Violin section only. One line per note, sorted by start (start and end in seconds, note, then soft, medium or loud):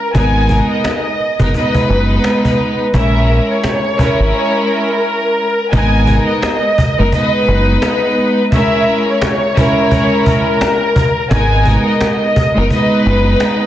0.00 0.11 A#4 medium
0.16 0.67 G#5 loud
0.71 1.50 D#5 medium
1.55 1.86 D#5 medium
1.89 2.20 B4 medium
2.95 3.47 E5 medium
3.50 4.30 C#5 medium
4.34 4.65 C#5 medium
4.68 5.69 A#4 medium
5.72 6.25 G#5 loud
6.27 7.08 D#5 medium
7.13 7.44 D#5 loud
7.47 7.79 B4 medium
8.52 9.04 E5 medium
9.08 9.88 C#5 medium
9.91 10.23 C#5 loud
10.26 11.27 A#4 medium
11.32 11.84 G#5 loud
11.87 12.67 D#5 medium
12.71 13.02 D#5 medium
13.05 13.36 B4 medium